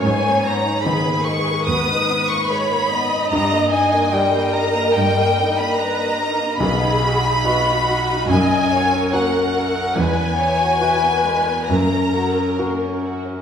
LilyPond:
<<
  \new Staff \with { instrumentName = "Violin section" } { \time 4/4 \key gis \minor \tempo 4 = 72 gis''8 ais''8 b''8 cis'''8 dis'''8. cis'''16 b''4 | ais''8 gis''8 g''8 ais''8 g''8. b''16 ais''4 | b''2 gis''4 fis''4 | gis''2 ais''4 r4 | }
  \new Staff \with { instrumentName = "Viola section" } { \time 4/4 \key gis \minor cis''4 gis'4 b'4 cis''8 dis''8~ | dis''4 ais'2 b'8 ais'8 | gis'4 fis'4 dis''8 cis''8 ais'4 | b'8 cis''8 b'4 ais'4. r8 | }
  \new Staff \with { instrumentName = "Grand piano" } { \time 4/4 \key gis \minor gis,4 dis2. | g,4 g2. | b,,4 <fis' dis''>4 fis,4 <fis' ais'>4 | e,4 <fis' b'>4 fis,4 <fis' ais'>4 | }
  \new Staff \with { instrumentName = "Violin section" } { \time 4/4 \key gis \minor << { b'1 | dis''1~ | dis''2 ais'2 | b'2 ais'4.~ ais'16 r16 | } \\ { gis16 ais16 b16 dis'16 b16 ais16 gis16 ais16 b16 dis'16 b16 ais16 gis16 ais16 b16 dis'16 | g16 ais16 dis'16 ais16 g16 ais16 dis'16 ais16 g16 ais16 dis'16 ais16 g16 ais16 dis'16 ais16 | b16 dis'16 fis'16 dis'16 b16 dis'16 fis'16 dis'16 ais16 cis'16 fis'16 cis'16 ais16 cis'16 fis'16 cis'16 | gis16 b16 e'16 fis'16 e'16 b16 gis16 b16 ais16 cis'16 fis'16 cis'16 ais16 cis'16 fis'16 cis'16 | } >> }
  \new Staff \with { instrumentName = "Cello section" } { \clef bass \time 4/4 \key gis \minor gis,4 r4 dis,4 r4 | g,4 r4 g,4 r4 | b,4 r4 fis,4 r4 | e,4 r4 fis,4 r4 | }
>>